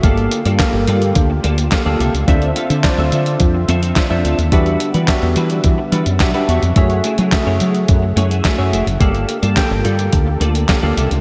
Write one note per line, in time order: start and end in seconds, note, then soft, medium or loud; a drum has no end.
0.03 0.26 G1 medium
0.03 6.72 D3 medium
0.03 0.39 A#3 medium
0.03 2.26 A#3 medium
0.03 0.30 A#3 medium
0.03 4.48 F4 medium
0.03 0.30 F4 medium
0.03 2.25 G4 medium
0.03 0.39 G4 medium
0.03 0.39 A4 medium
0.03 0.30 A4 medium
0.03 0.30 D5 medium
0.03 0.40 F5 medium
0.03 kick loud
0.03 closed hi-hat medium
0.17 closed hi-hat soft
0.31 muted clean electric guitar stroke soft
0.31 closed hi-hat medium
0.45 0.57 G2 medium
0.45 0.63 A#3 medium
0.45 0.62 F4 medium
0.45 0.62 A4 medium
0.45 0.62 D5 medium
0.45 closed hi-hat medium
0.59 1.31 A#3 medium
0.59 1.31 G4 medium
0.59 1.31 A4 medium
0.59 1.32 F5 medium
0.59 kick loud
0.59 snare loud
0.59 clap medium
0.59 closed hi-hat medium
0.73 0.85 G1 loud
0.73 muted clean electric guitar stroke medium
0.87 1.11 G2 medium
0.87 1.09 A#3 medium
0.87 1.02 F4 loud
0.87 1.01 A4 loud
0.87 1.01 D5 medium
0.87 closed hi-hat medium
1.02 muted clean electric guitar stroke soft
1.02 closed hi-hat soft
1.15 1.39 D2 loud
1.15 kick loud
1.15 closed hi-hat medium
1.30 muted clean electric guitar stroke soft
1.44 1.67 D2 medium
1.44 1.64 A#3 medium
1.44 1.58 F4 medium
1.44 1.57 A4 medium
1.44 1.57 D5 loud
1.44 closed hi-hat medium
1.58 muted clean electric guitar stroke soft
1.58 closed hi-hat medium
1.71 1.81 A#3 medium
1.71 1.81 G4 medium
1.71 1.81 A4 medium
1.71 1.81 F5 medium
1.71 muted clean electric guitar stroke soft
1.71 kick loud
1.71 snare loud
1.71 clap loud
1.71 closed hi-hat medium
1.85 1.97 D2 medium
1.85 2.13 A#3 medium
1.85 1.98 A#3 medium
1.85 1.99 F4 medium
1.85 2.13 G4 medium
1.85 2.13 A4 medium
1.85 1.99 A4 medium
1.85 2.00 D5 medium
1.85 2.13 F5 medium
1.99 2.11 C2 medium
1.99 2.16 A#3 medium
1.99 2.14 F4 medium
1.99 2.13 A4 medium
1.99 2.14 E5 medium
1.99 closed hi-hat medium
2.14 2.25 C#2 medium
2.14 muted clean electric guitar stroke soft
2.14 closed hi-hat soft
2.28 2.51 D2 loud
2.28 2.49 C4 medium
2.28 4.50 C4 medium
2.28 2.64 D4 medium
2.28 2.64 F4 medium
2.28 2.49 F4 medium
2.28 2.49 A4 loud
2.28 2.64 C5 medium
2.28 2.64 E5 loud
2.28 8.97 E5 medium
2.28 2.49 E5 loud
2.28 kick loud
2.28 closed hi-hat medium
2.42 closed hi-hat soft
2.56 2.70 C4 medium
2.56 2.70 F4 medium
2.56 2.69 A4 medium
2.56 2.70 F5 medium
2.56 closed hi-hat medium
2.70 2.81 D3 loud
2.70 2.83 C4 medium
2.70 2.84 F4 medium
2.70 2.84 A4 medium
2.70 2.84 E5 medium
2.70 closed hi-hat medium
2.83 3.56 D4 medium
2.83 2.90 E4 medium
2.83 3.56 C5 medium
2.83 3.56 D5 loud
2.83 muted clean electric guitar stroke soft
2.83 kick loud
2.83 snare loud
2.83 clap medium
2.83 closed hi-hat medium
2.89 3.59 F4 medium
2.98 3.09 D2 loud
2.98 3.11 C4 medium
2.98 3.12 F4 medium
2.98 3.12 A4 medium
2.98 3.13 E5 loud
3.12 3.35 D3 loud
3.12 3.29 C4 medium
3.12 3.26 F4 medium
3.12 3.26 A4 medium
3.12 3.25 E5 medium
3.12 closed hi-hat medium
3.26 muted clean electric guitar stroke medium
3.26 closed hi-hat soft
3.40 3.63 F2 loud
3.40 muted clean electric guitar stroke soft
3.40 kick loud
3.40 closed hi-hat medium
3.55 muted clean electric guitar stroke soft
3.68 3.91 F2 medium
3.68 3.83 C4 medium
3.68 3.82 F4 loud
3.68 3.82 A4 loud
3.68 3.82 E5 loud
3.68 closed hi-hat medium
3.82 3.95 C4 soft
3.82 3.96 F4 medium
3.82 3.96 A4 medium
3.82 3.97 F5 medium
3.82 closed hi-hat medium
3.96 4.05 D4 medium
3.96 4.05 F4 medium
3.96 4.05 C5 medium
3.96 4.05 E5 medium
3.96 muted clean electric guitar stroke soft
3.96 kick loud
3.96 snare loud
3.96 clap medium
3.96 closed hi-hat medium
4.09 4.22 F2 medium
4.09 4.23 C4 medium
4.09 4.37 D4 medium
4.09 4.37 F4 medium
4.09 4.24 F4 medium
4.09 4.24 A4 medium
4.09 4.37 C5 medium
4.09 4.37 E5 medium
4.09 4.25 E5 medium
4.24 4.36 D2 medium
4.24 4.41 C4 medium
4.24 4.38 F4 medium
4.24 4.38 A4 medium
4.24 4.38 F5 medium
4.24 closed hi-hat medium
4.38 4.50 D#2 medium
4.38 muted clean electric guitar stroke soft
4.38 closed hi-hat soft
4.52 4.75 E2 loud
4.52 6.74 G3 medium
4.52 4.78 G3 medium
4.52 6.74 B3 medium
4.52 4.88 D4 medium
4.52 4.78 D4 medium
4.52 4.88 F#4 medium
4.52 4.79 F#4 medium
4.52 4.88 G4 medium
4.52 4.79 B4 medium
4.52 4.88 E5 medium
4.52 8.97 F#5 medium
4.52 kick loud
4.52 closed hi-hat medium
4.66 closed hi-hat soft
4.80 muted clean electric guitar stroke soft
4.80 closed hi-hat medium
4.94 5.06 E3 medium
4.94 5.11 G3 medium
4.94 5.11 D4 medium
4.94 5.11 F#4 medium
4.94 5.11 B4 medium
4.94 closed hi-hat medium
5.08 5.80 D4 medium
5.08 5.80 F#4 medium
5.08 5.80 G4 medium
5.08 5.80 E5 loud
5.08 kick loud
5.08 snare loud
5.08 clap medium
5.08 closed hi-hat medium
5.22 5.34 E2 medium
5.22 muted clean electric guitar stroke medium
5.22 closed hi-hat soft
5.36 5.59 E3 medium
5.36 5.57 G3 medium
5.36 5.50 D4 medium
5.36 5.50 F#4 medium
5.36 5.49 B4 medium
5.36 closed hi-hat medium
5.50 muted clean electric guitar stroke medium
5.50 closed hi-hat soft
5.64 5.76 E3 loud
5.64 kick loud
5.64 closed hi-hat medium
5.78 muted clean electric guitar stroke medium
5.92 6.04 E3 medium
5.92 6.13 G3 medium
5.92 6.06 D4 medium
5.92 6.06 F#4 medium
5.92 6.05 B4 medium
5.92 closed hi-hat medium
6.06 6.18 F#2 medium
6.06 muted clean electric guitar stroke soft
6.06 closed hi-hat medium
6.20 6.32 B1 medium
6.20 6.29 D4 medium
6.20 6.29 F#4 medium
6.20 6.30 G4 medium
6.20 6.30 E5 medium
6.20 muted clean electric guitar stroke soft
6.20 kick loud
6.20 snare loud
6.20 clap medium
6.20 closed hi-hat medium
6.34 6.47 G3 medium
6.34 6.61 D4 medium
6.34 6.48 D4 medium
6.34 6.61 F#4 medium
6.34 6.48 F#4 medium
6.34 6.61 G4 medium
6.34 6.49 B4 medium
6.34 6.62 E5 medium
6.34 closed hi-hat soft
6.48 6.60 E2 medium
6.48 6.65 G3 medium
6.48 6.62 D4 medium
6.48 6.62 F#4 medium
6.48 6.62 C#5 medium
6.48 closed hi-hat medium
6.62 6.74 F2 medium
6.62 muted clean electric guitar stroke soft
6.62 closed hi-hat soft
6.76 6.99 F#2 loud
6.76 8.99 C#3 medium
6.76 6.97 A3 medium
6.76 8.99 A3 medium
6.76 7.13 A3 medium
6.76 6.97 E4 medium
6.76 7.13 F#4 medium
6.76 8.99 G#4 medium
6.76 6.97 G#4 medium
6.76 7.13 G#4 medium
6.76 6.98 C#5 loud
6.76 7.13 E5 medium
6.76 kick loud
6.76 closed hi-hat medium
6.90 closed hi-hat soft
7.04 7.18 A3 medium
7.04 7.18 E4 medium
7.04 7.18 G#4 medium
7.04 7.18 E5 medium
7.04 closed hi-hat medium
7.18 7.30 F#3 loud
7.18 7.31 A3 medium
7.18 7.32 E4 medium
7.18 7.32 G#4 medium
7.18 7.32 C#5 medium
7.18 closed hi-hat medium
7.32 8.04 A3 medium
7.32 8.04 F#4 medium
7.32 8.05 G#4 medium
7.32 8.05 E5 loud
7.32 kick loud
7.32 snare loud
7.32 clap loud
7.32 closed hi-hat medium
7.46 7.58 F#2 loud
7.46 7.59 A3 medium
7.46 7.60 E4 medium
7.46 7.60 G#4 medium
7.46 7.61 C#5 medium
7.60 7.84 F#3 medium
7.60 7.77 A3 medium
7.60 7.74 E4 medium
7.60 7.74 G#4 medium
7.60 7.73 C#5 medium
7.60 closed hi-hat medium
7.74 muted clean electric guitar stroke soft
7.74 closed hi-hat soft
7.88 8.12 F#2 loud
7.88 muted clean electric guitar stroke soft
7.88 kick loud
7.88 closed hi-hat medium
8.03 muted clean electric guitar stroke soft
8.16 8.39 F#2 medium
8.16 8.31 A3 loud
8.16 8.30 E4 medium
8.16 8.30 G#4 medium
8.16 8.30 C#5 loud
8.16 closed hi-hat medium
8.30 8.44 A3 medium
8.30 8.44 E4 medium
8.30 8.44 G#4 medium
8.30 8.45 E5 medium
8.30 closed hi-hat medium
8.44 8.54 A3 medium
8.44 8.54 F#4 medium
8.44 8.54 G#4 medium
8.44 8.54 E5 medium
8.44 muted clean electric guitar stroke soft
8.44 kick loud
8.44 snare loud
8.44 clap loud
8.44 closed hi-hat medium
8.58 8.70 F#2 medium
8.58 8.85 A3 medium
8.58 8.71 A3 medium
8.58 8.72 E4 medium
8.58 8.85 F#4 medium
8.58 8.86 G#4 medium
8.58 8.72 G#4 medium
8.58 8.73 C#5 medium
8.58 8.86 E5 medium
8.72 8.84 F1 medium
8.72 8.89 A3 medium
8.72 8.86 E4 medium
8.72 8.86 G#4 medium
8.72 8.86 E5 medium
8.72 closed hi-hat medium
8.86 8.98 F#1 medium
8.86 muted clean electric guitar stroke soft
8.86 closed hi-hat soft
9.00 9.24 G1 medium
9.00 11.21 D3 medium
9.00 9.26 A#3 medium
9.00 9.36 A#3 medium
9.00 11.21 A#3 medium
9.00 11.21 F4 medium
9.00 9.26 F4 loud
9.00 9.37 G4 medium
9.00 11.21 G4 medium
9.00 11.21 A4 medium
9.00 9.37 A4 medium
9.00 9.27 A4 loud
9.00 9.27 D5 loud
9.00 9.37 F5 medium
9.00 kick loud
9.00 closed hi-hat medium
9.15 closed hi-hat soft
9.29 muted clean electric guitar stroke soft
9.29 closed hi-hat medium
9.42 9.54 G2 medium
9.42 9.60 A#3 soft
9.42 9.59 F4 medium
9.42 9.59 A4 medium
9.42 9.59 D5 medium
9.42 closed hi-hat medium
9.57 10.29 A#3 medium
9.57 10.29 G4 medium
9.57 10.29 A4 medium
9.57 10.29 G5 loud
9.57 kick loud
9.57 snare loud
9.57 clap loud
9.57 closed hi-hat medium
9.71 9.82 G1 medium
9.71 muted clean electric guitar stroke soft
9.84 10.08 G2 medium
9.84 10.05 A#3 medium
9.84 9.98 F4 medium
9.84 9.98 A4 medium
9.84 9.97 D5 medium
9.84 closed hi-hat medium
9.99 muted clean electric guitar stroke medium
9.99 closed hi-hat medium
10.13 10.36 D2 medium
10.13 kick loud
10.13 closed hi-hat medium
10.27 muted clean electric guitar stroke soft
10.40 10.64 D2 medium
10.40 10.61 A#3 medium
10.40 10.55 F4 loud
10.40 10.54 A4 medium
10.40 10.54 D5 medium
10.40 closed hi-hat medium
10.55 muted clean electric guitar stroke soft
10.55 closed hi-hat medium
10.68 10.78 A#3 medium
10.68 10.78 G4 medium
10.68 10.78 A4 medium
10.68 10.78 F5 medium
10.68 muted clean electric guitar stroke soft
10.68 kick loud
10.68 snare loud
10.68 clap medium
10.68 closed hi-hat medium
10.82 10.94 D2 medium
10.82 11.10 A#3 medium
10.82 10.96 A#3 medium
10.82 10.96 F4 medium
10.82 11.10 G4 medium
10.82 11.10 A4 medium
10.82 10.96 A4 medium
10.82 10.97 D5 medium
10.82 11.10 F5 medium
10.97 11.08 C2 loud
10.97 11.13 A#3 medium
10.97 11.10 F4 medium
10.97 11.10 A4 medium
10.97 11.10 E5 medium
10.97 closed hi-hat medium
11.11 11.21 C#2 medium
11.11 muted clean electric guitar stroke soft
11.11 closed hi-hat soft